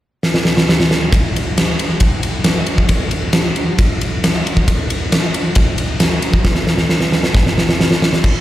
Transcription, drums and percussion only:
0.23 snare
0.34 snare
0.45 snare
0.57 snare
0.69 snare
0.80 snare
0.91 snare
1.13 kick, ride
1.36 ride
1.58 snare, ride
1.79 ride
2.00 kick, ride
2.23 ride
2.44 snare, ride
2.66 ride
2.78 kick
2.89 kick, ride
3.11 ride
3.33 snare, ride
3.56 ride
3.78 kick, ride
4.01 ride
4.24 snare, ride
4.47 ride
4.57 kick
4.68 kick, ride
4.90 ride
5.12 snare, ride
5.34 ride
5.55 kick, ride
5.78 ride
6.00 snare, ride
6.22 ride
6.34 kick
6.45 kick, snare
6.55 snare
6.67 snare
6.78 snare
6.89 snare
7.01 snare
7.12 snare
7.23 snare
7.35 kick, snare
7.46 snare
7.58 snare
7.69 snare
7.80 snare
7.91 snare
8.02 snare
8.13 snare
8.24 kick, crash

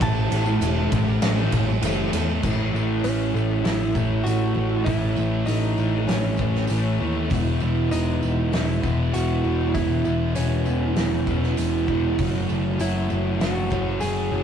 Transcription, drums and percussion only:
0.01 kick, ride, tambourine
0.16 tambourine
0.31 ride, tambourine
0.46 tambourine
0.61 ride, tambourine
0.92 kick, ride, tambourine
1.08 tambourine
1.22 snare, ride
1.38 tambourine
1.52 kick, ride, tambourine
1.69 tambourine
1.82 ride, tambourine
2.13 ride, tambourine
2.30 tambourine
2.43 kick, crash, tambourine
2.76 tambourine
3.04 open hi-hat, tambourine
3.36 tambourine
3.65 snare, open hi-hat, tambourine
3.95 kick, tambourine
4.26 open hi-hat, tambourine
4.86 kick, open hi-hat, tambourine
5.17 tambourine
5.47 open hi-hat, tambourine
5.78 tambourine
6.07 snare, open hi-hat, tambourine
6.37 kick, tambourine
6.55 snare
6.67 open hi-hat, tambourine
7.30 kick, open hi-hat, tambourine
7.60 tambourine
7.91 open hi-hat, tambourine
8.23 tambourine
8.52 snare, open hi-hat, tambourine
8.83 kick, tambourine
9.14 open hi-hat, tambourine
9.75 kick, open hi-hat, tambourine
10.05 tambourine
10.35 open hi-hat, tambourine
10.66 tambourine
10.96 snare, open hi-hat, tambourine
11.27 kick, tambourine
11.43 snare
11.57 open hi-hat, tambourine
11.88 kick, tambourine
12.18 kick, open hi-hat, tambourine
12.49 tambourine
12.79 open hi-hat, tambourine
13.10 tambourine
13.40 snare, open hi-hat, tambourine
13.70 kick, tambourine
14.01 open hi-hat, tambourine

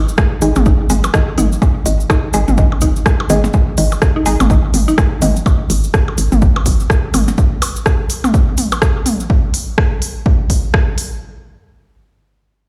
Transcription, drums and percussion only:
0.09 cabasa
0.18 kick, cross-stick, cabasa
0.42 open hi-hat, cabasa
0.56 high tom, cabasa, percussion blips
0.66 kick, cabasa
0.90 open hi-hat, high tom, cabasa
1.04 cabasa, percussion blips
1.14 kick, cross-stick, cabasa
1.38 open hi-hat, high tom, cabasa
1.52 cabasa
1.62 kick, cabasa, percussion blips
1.86 open hi-hat, cabasa
2.00 cabasa
2.10 kick, cross-stick, cabasa, percussion blips
2.33 open hi-hat, cabasa
2.48 high tom, cabasa
2.58 kick, cabasa
2.72 percussion blips
2.81 kick, open hi-hat, cabasa
2.96 cabasa
3.06 kick, cross-stick, cabasa
3.20 percussion blips
3.30 open hi-hat, high tom, cabasa
3.44 percussion blips, cabasa
3.53 kick, cabasa
3.77 open hi-hat, cabasa
3.92 cabasa, percussion blips
4.02 kick, cross-stick, cabasa
4.26 open hi-hat, cabasa
4.40 high tom, cabasa, percussion blips
4.50 kick, cabasa
4.74 open hi-hat, high tom, cabasa
4.88 cabasa
4.98 kick, cross-stick, cabasa, percussion blips
5.22 open hi-hat, high tom, cabasa
5.36 cabasa
5.46 kick, cabasa, percussion blips
5.70 open hi-hat, cabasa
5.84 cabasa
5.94 kick, cross-stick, cabasa
6.08 percussion blips
6.18 open hi-hat, cabasa
6.32 high tom, cabasa
6.42 kick, cabasa
6.56 percussion blips
6.66 kick, open hi-hat, cabasa
6.80 cabasa
6.90 kick, cross-stick, cabasa
7.14 open hi-hat, high tom, cabasa, percussion blips
7.28 percussion blips, cabasa
7.38 kick, cabasa
7.62 open hi-hat, cabasa, percussion blips
7.76 cabasa
7.86 kick, cross-stick, cabasa
8.10 open hi-hat, cabasa
8.24 high tom, cabasa, percussion blips
8.34 kick, cabasa
8.57 open hi-hat, high tom, cabasa
8.72 cabasa, percussion blips
8.82 kick, cross-stick, cabasa
9.06 open hi-hat, high tom, cabasa
9.20 cabasa
9.30 kick
9.54 open hi-hat
9.78 kick, cross-stick
10.02 open hi-hat
10.26 kick
10.50 kick, open hi-hat
10.74 kick, cross-stick
10.98 open hi-hat

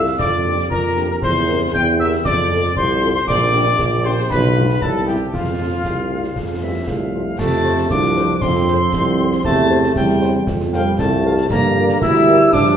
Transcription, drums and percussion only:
0.06 snare
0.19 concert bass drum, snare
0.58 snare
0.71 concert bass drum
0.97 snare
1.22 concert bass drum, snare
1.74 concert bass drum, snare
2.12 snare
2.25 concert bass drum, snare
2.64 snare
2.76 concert bass drum
3.02 snare
3.28 concert bass drum, snare, crash
3.79 concert bass drum, snare
4.18 snare
4.31 concert bass drum, snare
4.69 snare
4.82 concert bass drum
5.08 snare
5.34 concert bass drum, snare
5.85 concert bass drum, snare
6.23 snare
6.36 concert bass drum, snare
6.87 concert bass drum, snare
7.39 concert bass drum, snare, crash
7.78 snare
7.90 concert bass drum, snare
8.03 snare
8.16 snare
8.42 concert bass drum, snare
8.55 snare
8.68 snare
8.93 concert bass drum, snare
9.32 snare
9.44 concert bass drum, snare
9.83 snare
9.96 concert bass drum, snare
10.09 snare
10.22 snare
10.47 concert bass drum, snare
10.60 snare
10.73 snare
10.99 concert bass drum, snare
11.37 snare
11.50 concert bass drum, snare, crash
11.89 snare
12.02 concert bass drum, snare
12.14 snare
12.27 snare
12.53 concert bass drum, snare
12.66 snare

